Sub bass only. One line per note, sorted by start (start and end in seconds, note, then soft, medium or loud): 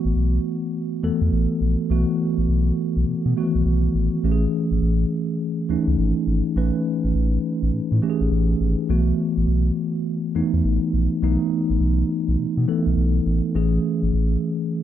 0.05 0.13 A1 loud
0.16 0.39 B1 medium
1.03 1.10 E2 medium
1.21 1.30 E2 loud
1.32 1.47 A1 loud
1.61 1.76 A#1 medium
1.90 2.05 B1 loud
2.38 2.46 A1 medium
2.48 2.72 B1 loud
2.96 3.05 B1 loud
3.07 3.14 B2 soft
3.26 3.34 B2 medium
3.55 3.63 B1 medium
3.65 3.89 B1 loud
3.94 4.09 A1 medium
4.24 4.47 A1 loud
4.71 4.79 G#1 medium
4.81 5.05 A1 loud
5.69 5.76 C#2 soft
5.87 5.96 C#2 loud
5.98 6.13 G#1 loud
6.27 6.42 G#1 medium
6.56 6.71 A1 loud
7.04 7.12 G#1 medium
7.15 7.38 A1 loud
7.62 7.71 A1 loud
7.73 7.80 A2 soft
7.92 8.00 A2 loud
8.21 8.29 A1 medium
8.31 8.54 A1 loud
8.60 8.75 G#1 medium
8.89 9.13 B1 loud
9.37 9.45 A1 loud
9.47 9.71 B1 loud
10.35 10.42 E2 soft
10.53 10.62 E2 loud
10.64 10.79 A1 loud
10.93 11.08 A#1 loud
11.22 11.37 B1 loud
11.70 11.78 A1 medium
11.80 12.04 B1 loud
12.28 12.36 B1 medium
12.39 12.46 B2 medium
12.57 12.66 B2 loud
12.86 12.95 B1 medium
12.97 13.20 B1 loud
13.26 13.41 A1 medium
13.55 13.78 A1 loud
14.03 14.11 G#1 medium
14.13 14.37 A1 loud